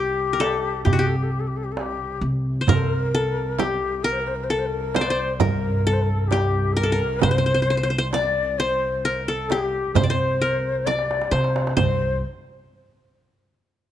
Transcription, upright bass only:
0, 0, Header, 1, 2, 480
1, 0, Start_track
1, 0, Tempo, 909091
1, 1413, Time_signature, 10, 3, 24, 8
1, 7346, End_track
2, 0, Start_track
2, 0, Title_t, "Upright bass"
2, 0, Program_c, 0, 32
2, 452, Note_on_c, 0, 48, 88
2, 1081, Note_off_c, 0, 48, 0
2, 1169, Note_on_c, 0, 48, 91
2, 1380, Note_off_c, 0, 48, 0
2, 1410, Note_on_c, 0, 48, 78
2, 2249, Note_off_c, 0, 48, 0
2, 2849, Note_on_c, 0, 43, 87
2, 3689, Note_off_c, 0, 43, 0
2, 3816, Note_on_c, 0, 48, 76
2, 4653, Note_off_c, 0, 48, 0
2, 5253, Note_on_c, 0, 48, 77
2, 5882, Note_off_c, 0, 48, 0
2, 5976, Note_on_c, 0, 48, 90
2, 6185, Note_off_c, 0, 48, 0
2, 6217, Note_on_c, 0, 36, 70
2, 6439, Note_off_c, 0, 36, 0
2, 7346, End_track
0, 0, End_of_file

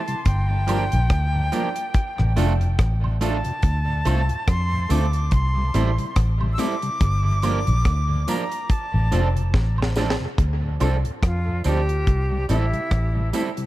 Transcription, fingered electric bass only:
0, 0, Header, 1, 2, 480
1, 0, Start_track
1, 0, Tempo, 843645
1, 148, Time_signature, 4, 2, 24, 8
1, 7773, End_track
2, 0, Start_track
2, 0, Title_t, "Fingered electric bass"
2, 0, Program_c, 0, 33
2, 148, Note_on_c, 0, 31, 116
2, 502, Note_off_c, 0, 31, 0
2, 530, Note_on_c, 0, 34, 90
2, 624, Note_off_c, 0, 34, 0
2, 627, Note_on_c, 0, 38, 104
2, 851, Note_off_c, 0, 38, 0
2, 1248, Note_on_c, 0, 33, 93
2, 1343, Note_off_c, 0, 33, 0
2, 1352, Note_on_c, 0, 29, 88
2, 1574, Note_off_c, 0, 29, 0
2, 1588, Note_on_c, 0, 33, 101
2, 1942, Note_off_c, 0, 33, 0
2, 2067, Note_on_c, 0, 38, 107
2, 2291, Note_off_c, 0, 38, 0
2, 2311, Note_on_c, 0, 36, 90
2, 2437, Note_off_c, 0, 36, 0
2, 2548, Note_on_c, 0, 41, 100
2, 2772, Note_off_c, 0, 41, 0
2, 2791, Note_on_c, 0, 38, 92
2, 3013, Note_off_c, 0, 38, 0
2, 3030, Note_on_c, 0, 36, 94
2, 3252, Note_off_c, 0, 36, 0
2, 3269, Note_on_c, 0, 33, 88
2, 3396, Note_off_c, 0, 33, 0
2, 3508, Note_on_c, 0, 33, 105
2, 3731, Note_off_c, 0, 33, 0
2, 3990, Note_on_c, 0, 31, 106
2, 4343, Note_off_c, 0, 31, 0
2, 4369, Note_on_c, 0, 34, 87
2, 4463, Note_off_c, 0, 34, 0
2, 4470, Note_on_c, 0, 38, 101
2, 4692, Note_off_c, 0, 38, 0
2, 5087, Note_on_c, 0, 33, 86
2, 5182, Note_off_c, 0, 33, 0
2, 5193, Note_on_c, 0, 29, 77
2, 5414, Note_off_c, 0, 29, 0
2, 5429, Note_on_c, 0, 33, 94
2, 5782, Note_off_c, 0, 33, 0
2, 5909, Note_on_c, 0, 38, 90
2, 6132, Note_off_c, 0, 38, 0
2, 6151, Note_on_c, 0, 36, 81
2, 6277, Note_off_c, 0, 36, 0
2, 6389, Note_on_c, 0, 41, 103
2, 6612, Note_off_c, 0, 41, 0
2, 6632, Note_on_c, 0, 38, 81
2, 6853, Note_off_c, 0, 38, 0
2, 6870, Note_on_c, 0, 36, 85
2, 7092, Note_off_c, 0, 36, 0
2, 7109, Note_on_c, 0, 33, 84
2, 7236, Note_off_c, 0, 33, 0
2, 7349, Note_on_c, 0, 33, 96
2, 7572, Note_off_c, 0, 33, 0
2, 7773, End_track
0, 0, End_of_file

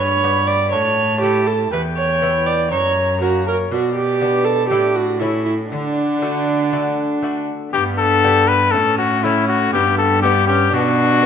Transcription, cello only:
0, 0, Header, 1, 2, 480
1, 0, Start_track
1, 0, Tempo, 500417
1, 1652, Time_signature, 4, 2, 24, 8
1, 10800, End_track
2, 0, Start_track
2, 0, Title_t, "Cello"
2, 0, Program_c, 0, 42
2, 0, Note_on_c, 0, 43, 65
2, 708, Note_on_c, 0, 45, 68
2, 723, Note_off_c, 0, 43, 0
2, 1655, Note_off_c, 0, 45, 0
2, 1660, Note_on_c, 0, 40, 69
2, 2611, Note_on_c, 0, 42, 71
2, 2625, Note_off_c, 0, 40, 0
2, 3559, Note_off_c, 0, 42, 0
2, 3564, Note_on_c, 0, 47, 65
2, 4520, Note_on_c, 0, 45, 64
2, 4535, Note_off_c, 0, 47, 0
2, 5491, Note_on_c, 0, 50, 59
2, 5506, Note_off_c, 0, 45, 0
2, 7230, Note_off_c, 0, 50, 0
2, 7427, Note_on_c, 0, 43, 78
2, 8383, Note_on_c, 0, 45, 83
2, 8398, Note_off_c, 0, 43, 0
2, 9341, Note_off_c, 0, 45, 0
2, 9347, Note_on_c, 0, 43, 86
2, 10283, Note_off_c, 0, 43, 0
2, 10299, Note_on_c, 0, 47, 89
2, 10800, Note_off_c, 0, 47, 0
2, 10800, End_track
0, 0, End_of_file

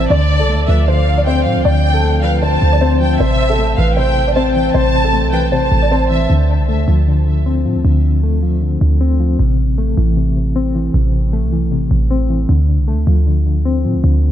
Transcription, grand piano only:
0, 0, Header, 1, 2, 480
1, 0, Start_track
1, 0, Tempo, 387097
1, 129, Time_signature, 4, 2, 24, 8
1, 17756, End_track
2, 0, Start_track
2, 0, Title_t, "Grand piano"
2, 0, Program_c, 0, 0
2, 132, Note_on_c, 0, 74, 108
2, 475, Note_off_c, 0, 74, 0
2, 492, Note_on_c, 0, 69, 73
2, 825, Note_off_c, 0, 69, 0
2, 847, Note_on_c, 0, 71, 76
2, 1067, Note_off_c, 0, 71, 0
2, 1092, Note_on_c, 0, 72, 83
2, 1436, Note_off_c, 0, 72, 0
2, 1456, Note_on_c, 0, 74, 79
2, 1559, Note_off_c, 0, 74, 0
2, 1577, Note_on_c, 0, 72, 84
2, 2024, Note_off_c, 0, 72, 0
2, 2045, Note_on_c, 0, 74, 106
2, 2392, Note_off_c, 0, 74, 0
2, 2404, Note_on_c, 0, 69, 81
2, 2741, Note_off_c, 0, 69, 0
2, 2768, Note_on_c, 0, 71, 81
2, 2987, Note_off_c, 0, 71, 0
2, 3007, Note_on_c, 0, 72, 87
2, 3353, Note_off_c, 0, 72, 0
2, 3380, Note_on_c, 0, 74, 69
2, 3481, Note_off_c, 0, 74, 0
2, 3486, Note_on_c, 0, 72, 90
2, 3938, Note_off_c, 0, 72, 0
2, 3972, Note_on_c, 0, 72, 114
2, 4316, Note_off_c, 0, 72, 0
2, 4334, Note_on_c, 0, 69, 85
2, 4666, Note_off_c, 0, 69, 0
2, 4691, Note_on_c, 0, 71, 80
2, 4908, Note_off_c, 0, 71, 0
2, 4921, Note_on_c, 0, 72, 88
2, 5270, Note_off_c, 0, 72, 0
2, 5303, Note_on_c, 0, 74, 74
2, 5403, Note_off_c, 0, 74, 0
2, 5405, Note_on_c, 0, 72, 89
2, 5858, Note_off_c, 0, 72, 0
2, 5882, Note_on_c, 0, 72, 112
2, 6230, Note_off_c, 0, 72, 0
2, 6255, Note_on_c, 0, 69, 71
2, 6587, Note_off_c, 0, 69, 0
2, 6608, Note_on_c, 0, 71, 82
2, 6827, Note_off_c, 0, 71, 0
2, 6845, Note_on_c, 0, 72, 82
2, 7192, Note_off_c, 0, 72, 0
2, 7221, Note_on_c, 0, 74, 72
2, 7321, Note_off_c, 0, 74, 0
2, 7336, Note_on_c, 0, 72, 90
2, 7784, Note_off_c, 0, 72, 0
2, 17756, End_track
0, 0, End_of_file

